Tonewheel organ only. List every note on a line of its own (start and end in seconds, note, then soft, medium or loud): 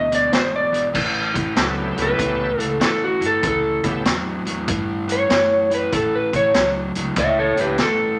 1.57 2.52 B3 medium
1.57 2.52 C#4 soft
1.57 2.52 E4 medium
1.57 2.52 G4 medium
1.57 2.52 A4 medium
3.85 4.04 B3 medium
3.85 4.04 C#4 medium
3.85 4.04 E4 medium
3.85 4.04 G4 soft
3.85 4.04 A4 medium